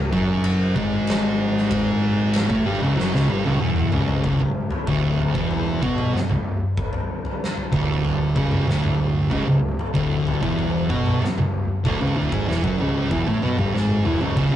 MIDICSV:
0, 0, Header, 1, 6, 480
1, 0, Start_track
1, 0, Key_signature, 4, "minor"
1, 0, Tempo, 632911
1, 1295, Time_signature, 4, 2, 24, 8
1, 11042, End_track
2, 0, Start_track
2, 0, Title_t, "Distorted electric guitar"
2, 0, Program_c, 0, 30
2, 92, Note_on_c, 0, 42, 91
2, 96, Note_on_c, 0, 54, 106
2, 566, Note_off_c, 0, 42, 0
2, 568, Note_off_c, 0, 54, 0
2, 573, Note_on_c, 0, 44, 102
2, 577, Note_on_c, 0, 56, 108
2, 1886, Note_off_c, 0, 44, 0
2, 1888, Note_off_c, 0, 56, 0
2, 1892, Note_on_c, 0, 45, 85
2, 1895, Note_on_c, 0, 57, 99
2, 2006, Note_off_c, 0, 45, 0
2, 2008, Note_off_c, 0, 57, 0
2, 2012, Note_on_c, 0, 43, 106
2, 2018, Note_on_c, 0, 55, 102
2, 2126, Note_off_c, 0, 43, 0
2, 2129, Note_off_c, 0, 55, 0
2, 2134, Note_on_c, 0, 37, 85
2, 2136, Note_on_c, 0, 49, 109
2, 2247, Note_off_c, 0, 37, 0
2, 2248, Note_off_c, 0, 49, 0
2, 2256, Note_on_c, 0, 42, 100
2, 2260, Note_on_c, 0, 54, 102
2, 2368, Note_off_c, 0, 42, 0
2, 2370, Note_off_c, 0, 54, 0
2, 2371, Note_on_c, 0, 37, 91
2, 2375, Note_on_c, 0, 49, 113
2, 2486, Note_off_c, 0, 37, 0
2, 2488, Note_off_c, 0, 49, 0
2, 2490, Note_on_c, 0, 43, 91
2, 2494, Note_on_c, 0, 55, 92
2, 2606, Note_off_c, 0, 43, 0
2, 2607, Note_off_c, 0, 55, 0
2, 2611, Note_on_c, 0, 37, 91
2, 2616, Note_on_c, 0, 49, 114
2, 2726, Note_off_c, 0, 37, 0
2, 2728, Note_off_c, 0, 49, 0
2, 2735, Note_on_c, 0, 40, 107
2, 2740, Note_on_c, 0, 52, 101
2, 2968, Note_off_c, 0, 40, 0
2, 2971, Note_off_c, 0, 52, 0
2, 2974, Note_on_c, 0, 37, 89
2, 2980, Note_on_c, 0, 49, 111
2, 3208, Note_off_c, 0, 37, 0
2, 3211, Note_off_c, 0, 49, 0
2, 3216, Note_on_c, 0, 37, 84
2, 3220, Note_on_c, 0, 49, 94
2, 3329, Note_off_c, 0, 37, 0
2, 3331, Note_off_c, 0, 49, 0
2, 3341, Note_on_c, 0, 37, 67
2, 3531, Note_off_c, 0, 37, 0
2, 3698, Note_on_c, 0, 38, 97
2, 3702, Note_on_c, 0, 50, 106
2, 4050, Note_off_c, 0, 38, 0
2, 4052, Note_off_c, 0, 50, 0
2, 4058, Note_on_c, 0, 40, 88
2, 4064, Note_on_c, 0, 52, 102
2, 4411, Note_off_c, 0, 40, 0
2, 4414, Note_off_c, 0, 52, 0
2, 4416, Note_on_c, 0, 47, 87
2, 4420, Note_on_c, 0, 59, 100
2, 4650, Note_off_c, 0, 47, 0
2, 4652, Note_off_c, 0, 59, 0
2, 4778, Note_on_c, 0, 37, 67
2, 4971, Note_off_c, 0, 37, 0
2, 5851, Note_on_c, 0, 38, 78
2, 5856, Note_on_c, 0, 50, 90
2, 6330, Note_off_c, 0, 38, 0
2, 6332, Note_off_c, 0, 50, 0
2, 6337, Note_on_c, 0, 37, 88
2, 6343, Note_on_c, 0, 49, 107
2, 6573, Note_off_c, 0, 37, 0
2, 6576, Note_off_c, 0, 49, 0
2, 6576, Note_on_c, 0, 38, 92
2, 6581, Note_on_c, 0, 50, 95
2, 7053, Note_off_c, 0, 38, 0
2, 7056, Note_off_c, 0, 50, 0
2, 7061, Note_on_c, 0, 37, 90
2, 7067, Note_on_c, 0, 49, 93
2, 7175, Note_off_c, 0, 37, 0
2, 7178, Note_off_c, 0, 49, 0
2, 7189, Note_on_c, 0, 37, 60
2, 7379, Note_off_c, 0, 37, 0
2, 7546, Note_on_c, 0, 38, 99
2, 7551, Note_on_c, 0, 50, 94
2, 7898, Note_off_c, 0, 38, 0
2, 7901, Note_off_c, 0, 50, 0
2, 7905, Note_on_c, 0, 40, 91
2, 7908, Note_on_c, 0, 52, 92
2, 8258, Note_off_c, 0, 40, 0
2, 8260, Note_off_c, 0, 52, 0
2, 8261, Note_on_c, 0, 47, 93
2, 8265, Note_on_c, 0, 59, 107
2, 8496, Note_off_c, 0, 47, 0
2, 8498, Note_off_c, 0, 59, 0
2, 8622, Note_on_c, 0, 37, 72
2, 8816, Note_off_c, 0, 37, 0
2, 8977, Note_on_c, 0, 38, 93
2, 8984, Note_on_c, 0, 50, 96
2, 9094, Note_off_c, 0, 38, 0
2, 9097, Note_off_c, 0, 50, 0
2, 9100, Note_on_c, 0, 37, 83
2, 9103, Note_on_c, 0, 49, 99
2, 9216, Note_off_c, 0, 37, 0
2, 9217, Note_off_c, 0, 49, 0
2, 9226, Note_on_c, 0, 38, 74
2, 9231, Note_on_c, 0, 50, 83
2, 9338, Note_off_c, 0, 38, 0
2, 9341, Note_off_c, 0, 50, 0
2, 9349, Note_on_c, 0, 44, 72
2, 9351, Note_on_c, 0, 56, 85
2, 9460, Note_off_c, 0, 44, 0
2, 9461, Note_off_c, 0, 56, 0
2, 9464, Note_on_c, 0, 40, 86
2, 9468, Note_on_c, 0, 52, 117
2, 9577, Note_off_c, 0, 40, 0
2, 9579, Note_off_c, 0, 52, 0
2, 9588, Note_on_c, 0, 42, 88
2, 9590, Note_on_c, 0, 54, 98
2, 9699, Note_off_c, 0, 42, 0
2, 9700, Note_off_c, 0, 54, 0
2, 9705, Note_on_c, 0, 37, 93
2, 9708, Note_on_c, 0, 49, 97
2, 9937, Note_off_c, 0, 37, 0
2, 9939, Note_off_c, 0, 49, 0
2, 9942, Note_on_c, 0, 40, 102
2, 9945, Note_on_c, 0, 52, 102
2, 10056, Note_off_c, 0, 40, 0
2, 10057, Note_off_c, 0, 52, 0
2, 10059, Note_on_c, 0, 45, 87
2, 10065, Note_on_c, 0, 57, 89
2, 10174, Note_off_c, 0, 45, 0
2, 10177, Note_off_c, 0, 57, 0
2, 10181, Note_on_c, 0, 47, 98
2, 10186, Note_on_c, 0, 59, 107
2, 10295, Note_off_c, 0, 47, 0
2, 10297, Note_off_c, 0, 59, 0
2, 10304, Note_on_c, 0, 43, 83
2, 10309, Note_on_c, 0, 55, 95
2, 10416, Note_off_c, 0, 43, 0
2, 10418, Note_off_c, 0, 55, 0
2, 10421, Note_on_c, 0, 44, 98
2, 10425, Note_on_c, 0, 56, 102
2, 10654, Note_off_c, 0, 44, 0
2, 10656, Note_off_c, 0, 56, 0
2, 10660, Note_on_c, 0, 40, 78
2, 10667, Note_on_c, 0, 52, 101
2, 10773, Note_off_c, 0, 40, 0
2, 10776, Note_off_c, 0, 52, 0
2, 10777, Note_on_c, 0, 37, 95
2, 10781, Note_on_c, 0, 49, 91
2, 10886, Note_off_c, 0, 37, 0
2, 10893, Note_off_c, 0, 49, 0
2, 10895, Note_on_c, 0, 37, 77
2, 10901, Note_on_c, 0, 49, 89
2, 11005, Note_off_c, 0, 37, 0
2, 11013, Note_off_c, 0, 49, 0
2, 11014, Note_on_c, 0, 37, 71
2, 11042, Note_off_c, 0, 37, 0
2, 11042, End_track
3, 0, Start_track
3, 0, Title_t, "Picked electric bass"
3, 0, Program_c, 1, 34
3, 0, Note_on_c, 1, 25, 99
3, 80, Note_off_c, 1, 25, 0
3, 97, Note_on_c, 1, 30, 85
3, 546, Note_off_c, 1, 30, 0
3, 576, Note_on_c, 1, 32, 96
3, 1865, Note_off_c, 1, 32, 0
3, 1895, Note_on_c, 1, 33, 94
3, 2006, Note_off_c, 1, 33, 0
3, 2017, Note_on_c, 1, 31, 90
3, 2127, Note_off_c, 1, 31, 0
3, 2138, Note_on_c, 1, 25, 83
3, 2248, Note_off_c, 1, 25, 0
3, 2256, Note_on_c, 1, 30, 106
3, 2367, Note_off_c, 1, 30, 0
3, 2375, Note_on_c, 1, 25, 108
3, 2486, Note_off_c, 1, 25, 0
3, 2496, Note_on_c, 1, 31, 84
3, 2607, Note_off_c, 1, 31, 0
3, 2616, Note_on_c, 1, 25, 100
3, 2727, Note_off_c, 1, 25, 0
3, 2732, Note_on_c, 1, 28, 83
3, 2957, Note_off_c, 1, 28, 0
3, 2976, Note_on_c, 1, 25, 101
3, 3199, Note_off_c, 1, 25, 0
3, 3216, Note_on_c, 1, 25, 91
3, 3328, Note_off_c, 1, 25, 0
3, 3340, Note_on_c, 1, 25, 80
3, 3561, Note_off_c, 1, 25, 0
3, 3697, Note_on_c, 1, 26, 100
3, 4032, Note_off_c, 1, 26, 0
3, 4059, Note_on_c, 1, 28, 89
3, 4393, Note_off_c, 1, 28, 0
3, 4418, Note_on_c, 1, 35, 79
3, 4641, Note_off_c, 1, 35, 0
3, 4779, Note_on_c, 1, 25, 82
3, 5002, Note_off_c, 1, 25, 0
3, 5861, Note_on_c, 1, 26, 91
3, 6312, Note_off_c, 1, 26, 0
3, 6339, Note_on_c, 1, 25, 80
3, 6564, Note_off_c, 1, 25, 0
3, 6584, Note_on_c, 1, 26, 90
3, 7034, Note_off_c, 1, 26, 0
3, 7064, Note_on_c, 1, 25, 94
3, 7176, Note_off_c, 1, 25, 0
3, 7183, Note_on_c, 1, 25, 81
3, 7407, Note_off_c, 1, 25, 0
3, 7547, Note_on_c, 1, 26, 104
3, 7881, Note_off_c, 1, 26, 0
3, 7908, Note_on_c, 1, 28, 86
3, 8242, Note_off_c, 1, 28, 0
3, 8269, Note_on_c, 1, 35, 82
3, 8491, Note_off_c, 1, 35, 0
3, 8631, Note_on_c, 1, 25, 83
3, 8851, Note_off_c, 1, 25, 0
3, 8988, Note_on_c, 1, 26, 90
3, 9098, Note_off_c, 1, 26, 0
3, 9110, Note_on_c, 1, 25, 84
3, 9219, Note_off_c, 1, 25, 0
3, 9234, Note_on_c, 1, 26, 96
3, 9341, Note_off_c, 1, 26, 0
3, 9347, Note_on_c, 1, 32, 102
3, 9457, Note_off_c, 1, 32, 0
3, 9468, Note_on_c, 1, 28, 104
3, 9578, Note_off_c, 1, 28, 0
3, 9588, Note_on_c, 1, 30, 94
3, 9698, Note_off_c, 1, 30, 0
3, 9711, Note_on_c, 1, 25, 89
3, 9930, Note_off_c, 1, 25, 0
3, 9944, Note_on_c, 1, 28, 88
3, 10055, Note_off_c, 1, 28, 0
3, 10065, Note_on_c, 1, 33, 107
3, 10175, Note_off_c, 1, 33, 0
3, 10183, Note_on_c, 1, 35, 96
3, 10294, Note_off_c, 1, 35, 0
3, 10305, Note_on_c, 1, 31, 88
3, 10415, Note_off_c, 1, 31, 0
3, 10421, Note_on_c, 1, 32, 80
3, 10644, Note_off_c, 1, 32, 0
3, 10662, Note_on_c, 1, 28, 103
3, 10773, Note_off_c, 1, 28, 0
3, 10777, Note_on_c, 1, 25, 94
3, 10890, Note_off_c, 1, 25, 0
3, 10899, Note_on_c, 1, 25, 83
3, 11011, Note_off_c, 1, 25, 0
3, 11042, End_track
4, 0, Start_track
4, 0, Title_t, "Muted distorted electric guitar strokes"
4, 4660, Note_on_c, 9, 29, 62
4, 4736, Note_off_c, 9, 29, 0
4, 8500, Note_on_c, 9, 29, 57
4, 8576, Note_off_c, 9, 29, 0
4, 11042, End_track
5, 0, Start_track
5, 0, Title_t, "Muted picked electric bass strokes"
5, 4661, Note_on_c, 9, 29, 34
5, 4737, Note_off_c, 9, 29, 0
5, 8515, Note_on_c, 9, 29, 36
5, 8591, Note_off_c, 9, 29, 0
5, 11042, End_track
6, 0, Start_track
6, 0, Title_t, "Drums"
6, 96, Note_on_c, 9, 36, 119
6, 172, Note_off_c, 9, 36, 0
6, 333, Note_on_c, 9, 53, 77
6, 409, Note_off_c, 9, 53, 0
6, 576, Note_on_c, 9, 36, 97
6, 652, Note_off_c, 9, 36, 0
6, 813, Note_on_c, 9, 53, 73
6, 834, Note_on_c, 9, 38, 116
6, 889, Note_off_c, 9, 53, 0
6, 910, Note_off_c, 9, 38, 0
6, 1196, Note_on_c, 9, 38, 40
6, 1272, Note_off_c, 9, 38, 0
6, 1295, Note_on_c, 9, 53, 78
6, 1296, Note_on_c, 9, 36, 120
6, 1371, Note_off_c, 9, 36, 0
6, 1371, Note_off_c, 9, 53, 0
6, 1771, Note_on_c, 9, 53, 81
6, 1792, Note_on_c, 9, 38, 122
6, 1847, Note_off_c, 9, 53, 0
6, 1868, Note_off_c, 9, 38, 0
6, 1894, Note_on_c, 9, 36, 94
6, 1970, Note_off_c, 9, 36, 0
6, 2273, Note_on_c, 9, 38, 75
6, 2349, Note_off_c, 9, 38, 0
6, 2390, Note_on_c, 9, 38, 69
6, 2466, Note_off_c, 9, 38, 0
6, 2489, Note_on_c, 9, 48, 68
6, 2565, Note_off_c, 9, 48, 0
6, 2612, Note_on_c, 9, 48, 68
6, 2688, Note_off_c, 9, 48, 0
6, 2731, Note_on_c, 9, 47, 88
6, 2807, Note_off_c, 9, 47, 0
6, 2852, Note_on_c, 9, 45, 81
6, 2928, Note_off_c, 9, 45, 0
6, 2974, Note_on_c, 9, 43, 106
6, 3050, Note_off_c, 9, 43, 0
6, 3093, Note_on_c, 9, 43, 102
6, 3169, Note_off_c, 9, 43, 0
6, 3211, Note_on_c, 9, 43, 87
6, 3216, Note_on_c, 9, 36, 108
6, 3287, Note_off_c, 9, 43, 0
6, 3292, Note_off_c, 9, 36, 0
6, 3334, Note_on_c, 9, 43, 85
6, 3410, Note_off_c, 9, 43, 0
6, 3569, Note_on_c, 9, 43, 99
6, 3644, Note_off_c, 9, 43, 0
6, 3696, Note_on_c, 9, 36, 116
6, 3772, Note_off_c, 9, 36, 0
6, 3938, Note_on_c, 9, 43, 82
6, 4014, Note_off_c, 9, 43, 0
6, 4058, Note_on_c, 9, 36, 111
6, 4134, Note_off_c, 9, 36, 0
6, 4176, Note_on_c, 9, 43, 96
6, 4252, Note_off_c, 9, 43, 0
6, 4416, Note_on_c, 9, 47, 68
6, 4419, Note_on_c, 9, 36, 102
6, 4492, Note_off_c, 9, 47, 0
6, 4495, Note_off_c, 9, 36, 0
6, 4536, Note_on_c, 9, 43, 90
6, 4536, Note_on_c, 9, 47, 84
6, 4611, Note_off_c, 9, 43, 0
6, 4611, Note_off_c, 9, 47, 0
6, 4655, Note_on_c, 9, 47, 79
6, 4676, Note_on_c, 9, 38, 76
6, 4731, Note_off_c, 9, 47, 0
6, 4752, Note_off_c, 9, 38, 0
6, 4773, Note_on_c, 9, 43, 82
6, 4773, Note_on_c, 9, 47, 77
6, 4849, Note_off_c, 9, 43, 0
6, 4849, Note_off_c, 9, 47, 0
6, 5137, Note_on_c, 9, 43, 82
6, 5138, Note_on_c, 9, 36, 113
6, 5213, Note_off_c, 9, 43, 0
6, 5214, Note_off_c, 9, 36, 0
6, 5254, Note_on_c, 9, 43, 92
6, 5330, Note_off_c, 9, 43, 0
6, 5497, Note_on_c, 9, 43, 88
6, 5573, Note_off_c, 9, 43, 0
6, 5642, Note_on_c, 9, 38, 88
6, 5718, Note_off_c, 9, 38, 0
6, 5743, Note_on_c, 9, 43, 68
6, 5819, Note_off_c, 9, 43, 0
6, 5858, Note_on_c, 9, 43, 88
6, 5860, Note_on_c, 9, 36, 112
6, 5934, Note_off_c, 9, 43, 0
6, 5936, Note_off_c, 9, 36, 0
6, 6101, Note_on_c, 9, 43, 94
6, 6177, Note_off_c, 9, 43, 0
6, 6336, Note_on_c, 9, 47, 74
6, 6339, Note_on_c, 9, 36, 100
6, 6412, Note_off_c, 9, 47, 0
6, 6415, Note_off_c, 9, 36, 0
6, 6457, Note_on_c, 9, 43, 78
6, 6457, Note_on_c, 9, 47, 77
6, 6533, Note_off_c, 9, 43, 0
6, 6533, Note_off_c, 9, 47, 0
6, 6580, Note_on_c, 9, 47, 82
6, 6600, Note_on_c, 9, 38, 82
6, 6655, Note_off_c, 9, 47, 0
6, 6676, Note_off_c, 9, 38, 0
6, 6701, Note_on_c, 9, 43, 82
6, 6701, Note_on_c, 9, 47, 75
6, 6777, Note_off_c, 9, 43, 0
6, 6777, Note_off_c, 9, 47, 0
6, 7062, Note_on_c, 9, 43, 87
6, 7063, Note_on_c, 9, 36, 108
6, 7138, Note_off_c, 9, 36, 0
6, 7138, Note_off_c, 9, 43, 0
6, 7185, Note_on_c, 9, 43, 83
6, 7261, Note_off_c, 9, 43, 0
6, 7427, Note_on_c, 9, 43, 103
6, 7503, Note_off_c, 9, 43, 0
6, 7547, Note_on_c, 9, 36, 122
6, 7622, Note_off_c, 9, 36, 0
6, 7789, Note_on_c, 9, 43, 93
6, 7865, Note_off_c, 9, 43, 0
6, 7907, Note_on_c, 9, 36, 101
6, 7983, Note_off_c, 9, 36, 0
6, 8027, Note_on_c, 9, 43, 87
6, 8103, Note_off_c, 9, 43, 0
6, 8267, Note_on_c, 9, 36, 94
6, 8267, Note_on_c, 9, 47, 74
6, 8342, Note_off_c, 9, 36, 0
6, 8343, Note_off_c, 9, 47, 0
6, 8389, Note_on_c, 9, 43, 87
6, 8389, Note_on_c, 9, 47, 69
6, 8464, Note_off_c, 9, 43, 0
6, 8464, Note_off_c, 9, 47, 0
6, 8509, Note_on_c, 9, 47, 87
6, 8529, Note_on_c, 9, 38, 77
6, 8585, Note_off_c, 9, 47, 0
6, 8605, Note_off_c, 9, 38, 0
6, 8628, Note_on_c, 9, 43, 77
6, 8628, Note_on_c, 9, 47, 78
6, 8704, Note_off_c, 9, 43, 0
6, 8704, Note_off_c, 9, 47, 0
6, 8987, Note_on_c, 9, 36, 104
6, 8988, Note_on_c, 9, 43, 92
6, 9063, Note_off_c, 9, 36, 0
6, 9063, Note_off_c, 9, 43, 0
6, 9109, Note_on_c, 9, 43, 88
6, 9185, Note_off_c, 9, 43, 0
6, 9345, Note_on_c, 9, 43, 84
6, 9346, Note_on_c, 9, 36, 117
6, 9421, Note_off_c, 9, 43, 0
6, 9422, Note_off_c, 9, 36, 0
6, 9490, Note_on_c, 9, 38, 91
6, 9566, Note_off_c, 9, 38, 0
6, 9584, Note_on_c, 9, 43, 74
6, 9585, Note_on_c, 9, 36, 93
6, 9660, Note_off_c, 9, 43, 0
6, 9661, Note_off_c, 9, 36, 0
6, 9705, Note_on_c, 9, 43, 89
6, 9781, Note_off_c, 9, 43, 0
6, 9942, Note_on_c, 9, 43, 94
6, 9943, Note_on_c, 9, 36, 115
6, 10018, Note_off_c, 9, 43, 0
6, 10019, Note_off_c, 9, 36, 0
6, 10181, Note_on_c, 9, 47, 76
6, 10257, Note_off_c, 9, 47, 0
6, 10303, Note_on_c, 9, 43, 81
6, 10303, Note_on_c, 9, 47, 77
6, 10379, Note_off_c, 9, 43, 0
6, 10379, Note_off_c, 9, 47, 0
6, 10442, Note_on_c, 9, 38, 63
6, 10517, Note_off_c, 9, 38, 0
6, 10544, Note_on_c, 9, 48, 58
6, 10620, Note_off_c, 9, 48, 0
6, 10658, Note_on_c, 9, 45, 85
6, 10734, Note_off_c, 9, 45, 0
6, 10778, Note_on_c, 9, 43, 98
6, 10854, Note_off_c, 9, 43, 0
6, 10898, Note_on_c, 9, 36, 112
6, 10898, Note_on_c, 9, 43, 92
6, 10973, Note_off_c, 9, 43, 0
6, 10974, Note_off_c, 9, 36, 0
6, 11015, Note_on_c, 9, 43, 91
6, 11042, Note_off_c, 9, 43, 0
6, 11042, End_track
0, 0, End_of_file